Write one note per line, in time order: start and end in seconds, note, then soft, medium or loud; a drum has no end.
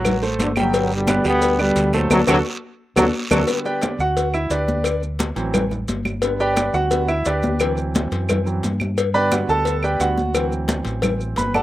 0.00 0.35 A1 medium
0.00 0.19 A2 medium
0.00 0.19 C3 medium
0.00 0.16 F#3 loud
0.00 0.16 F#4 medium
0.00 0.16 F#5 medium
0.05 cowbell medium
0.05 high conga soft
0.05 low conga medium
0.05 long guiro medium
0.05 claves medium
0.05 maracas medium
0.22 0.51 A3 medium
0.22 0.51 A4 medium
0.22 0.51 C5 medium
0.22 high conga soft
0.22 maracas soft
0.38 1.19 G1 medium
0.38 0.48 D3 medium
0.38 cowbell medium
0.38 high conga medium
0.38 short guiro medium
0.38 maracas medium
0.56 0.91 B2 medium
0.56 0.90 D3 medium
0.56 0.90 F#3 medium
0.56 0.71 G3 medium
0.56 0.71 G4 medium
0.56 0.71 G5 loud
0.56 high conga medium
0.56 short guiro medium
0.56 claves medium
0.56 maracas soft
0.73 1.01 G3 medium
0.73 1.02 G4 medium
0.73 1.02 G5 medium
0.73 cowbell loud
0.73 high conga soft
0.73 long guiro medium
0.73 maracas medium
0.91 1.56 B2 medium
0.91 1.25 D3 medium
0.91 1.25 G3 loud
0.91 high conga soft
0.91 maracas soft
1.07 1.22 B3 medium
1.07 1.23 B4 medium
1.07 1.23 D5 medium
1.07 cowbell medium
1.07 high conga loud
1.07 short guiro medium
1.07 claves medium
1.07 maracas medium
1.24 1.73 D2 medium
1.24 1.59 D3 medium
1.24 1.53 G3 loud
1.24 1.58 G3 loud
1.24 1.57 B3 loud
1.24 1.53 G4 loud
1.24 1.54 G5 loud
1.24 high conga soft
1.24 short guiro medium
1.24 maracas soft
1.42 cowbell loud
1.42 high conga soft
1.42 long guiro medium
1.42 maracas medium
1.59 2.08 B2 medium
1.59 2.08 D3 medium
1.59 1.94 G3 loud
1.59 1.87 B3 medium
1.59 1.87 B4 medium
1.59 1.88 D5 medium
1.59 high conga soft
1.59 claves medium
1.59 maracas soft
1.76 2.08 D2 medium
1.76 cowbell medium
1.76 high conga soft
1.76 short guiro medium
1.76 maracas medium
1.93 2.10 A2 medium
1.93 2.10 C3 medium
1.93 2.09 F#3 medium
1.93 2.08 A3 medium
1.93 2.08 A4 medium
1.93 2.08 C5 medium
1.93 high conga medium
1.93 short guiro medium
1.93 maracas soft
2.10 2.23 D2 loud
2.10 2.19 C3 medium
2.10 2.19 D3 loud
2.10 2.19 F#3 loud
2.10 2.22 D4 medium
2.10 2.22 F#4 medium
2.10 2.22 A4 medium
2.10 cowbell loud
2.10 high conga loud
2.10 long guiro loud
2.10 claves loud
2.10 maracas loud
2.27 2.40 D2 medium
2.27 2.36 C3 loud
2.27 2.36 D3 loud
2.27 2.36 F#3 loud
2.27 2.40 D4 loud
2.27 2.39 F#4 loud
2.27 2.40 A4 loud
2.27 cowbell loud
2.27 high conga loud
2.27 long guiro medium
2.27 claves loud
2.27 maracas loud
2.96 3.09 D2 loud
2.96 3.05 C3 loud
2.96 3.04 D3 loud
2.96 3.05 F#3 loud
2.96 3.08 D4 loud
2.96 3.08 F#4 loud
2.96 3.08 A4 loud
2.96 cowbell loud
2.96 high conga loud
2.96 long guiro loud
2.96 claves loud
2.96 maracas loud
3.30 3.44 D2 medium
3.30 3.40 C3 loud
3.30 3.40 D3 medium
3.30 3.40 F#3 medium
3.30 3.42 D4 loud
3.30 3.42 F#4 loud
3.30 3.42 A4 loud
3.30 cowbell loud
3.30 high conga loud
3.30 long guiro loud
3.30 claves loud
3.30 maracas loud
3.47 3.97 D3 soft
3.47 3.97 G3 soft
3.47 3.98 B3 soft
3.47 cowbell loud
3.47 high conga soft
3.47 maracas medium
3.65 3.81 G4 medium
3.65 3.81 B4 medium
3.65 3.81 D5 medium
3.65 3.82 G5 medium
3.65 high conga soft
3.65 maracas soft
3.82 3.99 D4 soft
3.82 3.99 G4 soft
3.82 3.99 B4 soft
3.82 3.99 D5 medium
3.82 cowbell medium
3.82 high conga medium
3.82 claves medium
3.82 maracas medium
3.99 4.47 D2 medium
3.99 4.32 F#4 medium
3.99 4.32 F#5 loud
3.99 high conga soft
3.99 maracas soft
4.17 cowbell medium
4.17 high conga soft
4.17 maracas medium
4.34 4.51 E4 medium
4.34 4.51 E5 medium
4.34 high conga soft
4.34 claves medium
4.34 maracas soft
4.50 5.31 D2 medium
4.50 4.99 D4 medium
4.50 4.83 G4 medium
4.50 4.99 B4 medium
4.50 4.99 D5 medium
4.50 cowbell medium
4.50 high conga soft
4.50 maracas medium
4.68 high conga medium
4.68 maracas soft
4.84 cowbell loud
4.84 high conga soft
4.84 claves medium
4.84 maracas medium
5.03 high conga soft
5.03 maracas soft
5.19 cowbell medium
5.19 high conga loud
5.19 maracas medium
5.36 5.84 A1 medium
5.36 5.59 E3 medium
5.36 5.60 F#3 medium
5.36 5.60 C4 medium
5.36 cowbell medium
5.36 maracas soft
5.54 cowbell loud
5.54 high conga soft
5.54 low conga medium
5.54 claves medium
5.54 maracas medium
5.71 high conga soft
5.71 low conga medium
5.71 maracas soft
5.88 6.68 G1 medium
5.88 cowbell medium
5.88 high conga medium
5.88 maracas medium
6.05 high conga medium
6.05 claves medium
6.05 maracas soft
6.22 6.89 D3 soft
6.22 6.90 G3 soft
6.22 6.90 B3 medium
6.22 cowbell loud
6.22 high conga soft
6.22 maracas medium
6.40 6.56 G4 medium
6.40 6.55 B4 medium
6.40 6.55 D5 medium
6.40 6.57 G5 loud
6.40 high conga soft
6.40 maracas soft
6.52 6.55 C#5 soft
6.57 6.74 D4 soft
6.57 6.74 G4 soft
6.57 6.74 B4 soft
6.57 6.74 D5 medium
6.57 cowbell medium
6.57 high conga medium
6.57 claves medium
6.57 maracas medium
6.74 7.22 D2 loud
6.74 7.07 F#4 medium
6.74 7.06 F#5 loud
6.74 high conga soft
6.74 maracas soft
6.91 7.07 D3 soft
6.91 7.07 G3 soft
6.91 7.07 B3 soft
6.91 cowbell loud
6.91 high conga soft
6.91 maracas medium
7.08 7.25 E4 medium
7.08 7.25 E5 medium
7.08 high conga soft
7.08 claves medium
7.08 maracas soft
7.25 8.06 D2 medium
7.25 7.74 D4 medium
7.25 7.59 G4 medium
7.25 7.74 B4 medium
7.25 7.74 D5 medium
7.25 cowbell medium
7.25 high conga soft
7.25 maracas medium
7.43 high conga medium
7.43 maracas soft
7.60 8.44 E3 medium
7.60 8.44 F#3 soft
7.60 8.45 C4 medium
7.60 cowbell loud
7.60 claves medium
7.60 maracas medium
7.77 high conga soft
7.77 maracas soft
7.95 cowbell medium
7.95 high conga loud
7.95 maracas medium
8.12 8.60 F#2 loud
8.12 cowbell medium
8.12 maracas soft
8.29 cowbell medium
8.29 high conga soft
8.29 low conga medium
8.29 claves medium
8.29 maracas medium
8.46 8.61 E3 soft
8.46 8.61 F#3 soft
8.46 8.62 C4 medium
8.46 high conga soft
8.46 maracas soft
8.63 9.43 G2 medium
8.63 cowbell medium
8.63 high conga medium
8.63 maracas medium
8.80 high conga medium
8.80 claves medium
8.80 maracas soft
8.98 cowbell loud
8.98 high conga soft
8.98 maracas medium
9.14 9.99 D3 medium
9.14 9.99 G3 medium
9.14 9.99 B3 medium
9.14 9.31 B4 medium
9.14 9.31 D5 loud
9.14 9.32 G5 medium
9.14 9.31 B5 loud
9.14 high conga soft
9.14 maracas soft
9.32 9.49 F#4 medium
9.32 9.49 F#5 medium
9.32 cowbell medium
9.32 high conga loud
9.32 claves medium
9.32 maracas medium
9.48 9.97 D2 medium
9.48 9.82 A4 medium
9.48 9.81 A5 loud
9.48 high conga soft
9.48 maracas soft
9.65 cowbell loud
9.65 high conga soft
9.65 maracas medium
9.83 10.00 G4 medium
9.83 10.00 B4 medium
9.83 10.01 D5 medium
9.83 10.00 G5 medium
9.83 high conga soft
9.83 claves medium
9.83 maracas soft
10.00 10.80 D2 medium
10.00 10.16 D3 soft
10.00 10.16 G3 soft
10.00 10.16 B3 medium
10.00 10.49 F#4 medium
10.00 10.48 F#5 medium
10.00 cowbell medium
10.00 high conga soft
10.00 maracas medium
10.18 high conga medium
10.18 maracas soft
10.35 11.63 E3 soft
10.35 11.63 F#3 soft
10.35 11.63 C4 medium
10.35 cowbell loud
10.35 high conga soft
10.35 claves medium
10.35 maracas medium
10.52 high conga soft
10.52 maracas soft
10.68 cowbell medium
10.68 high conga loud
10.68 maracas medium
10.85 11.33 A1 medium
10.85 cowbell medium
10.85 maracas soft
11.02 cowbell loud
11.02 high conga soft
11.02 low conga medium
11.02 claves medium
11.02 maracas medium
11.21 high conga soft
11.21 maracas soft
11.36 11.63 G1 medium
11.36 11.54 B4 medium
11.36 11.54 B5 medium
11.36 cowbell medium
11.36 high conga medium
11.36 maracas medium
11.54 11.63 A4 medium
11.54 11.63 D5 medium
11.54 11.63 F#5 medium
11.54 11.63 A5 medium
11.54 high conga medium
11.54 claves medium
11.54 maracas soft